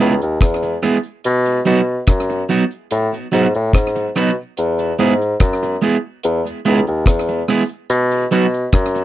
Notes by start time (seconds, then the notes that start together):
0.00 C#2 G#3 B3 E4 G#4, closed hi-hat
0.22 D#2, closed hi-hat
0.41 E2, kick, cross-stick, closed hi-hat
0.63 muted clean electric guitar stroke, closed hi-hat
0.83 G#3 B3 E4 G#4, cross-stick, closed hi-hat
1.03 closed hi-hat
1.24 B2, closed hi-hat
1.46 closed hi-hat
1.65 B2 F#3 B3 D#4 F#4, closed hi-hat
2.07 F#2, kick, cross-stick, closed hi-hat
2.30 muted clean electric guitar stroke, closed hi-hat
2.49 F#3 B3 D#4 F#4, closed hi-hat
2.71 closed hi-hat
2.91 A2, closed hi-hat
3.14 closed hi-hat
3.32 G#2 F#3 B3 D#4 F#4, closed hi-hat
3.55 A2, closed hi-hat
3.73 G#2, kick, cross-stick, closed hi-hat
3.96 muted clean electric guitar stroke, closed hi-hat
4.16 B2 F#3 B3 D#4 F#4, cross-stick, closed hi-hat
4.57 E2, closed hi-hat
4.79 closed hi-hat
4.99 G#2 G#3 B3 E4 G#4, closed hi-hat
5.22 closed hi-hat
5.40 F#2, kick, cross-stick, closed hi-hat
5.63 muted clean electric guitar stroke, closed hi-hat
5.82 G#3 B3 E4 G#4, closed hi-hat
6.23 E2, closed hi-hat
6.46 closed hi-hat
6.65 C#2 G#3 B3 E4 G#4, closed hi-hat
6.87 D#2, closed hi-hat
7.06 E2, kick, cross-stick, closed hi-hat
7.29 muted clean electric guitar stroke, closed hi-hat
7.48 G#3 B3 E4 G#4, cross-stick, open hi-hat
7.69 closed hi-hat
7.90 B2, closed hi-hat
8.11 closed hi-hat
8.31 B2 F#3 B3 D#4 F#4, closed hi-hat
8.54 closed hi-hat
8.72 F#2, kick, cross-stick, closed hi-hat
8.95 muted clean electric guitar stroke, closed hi-hat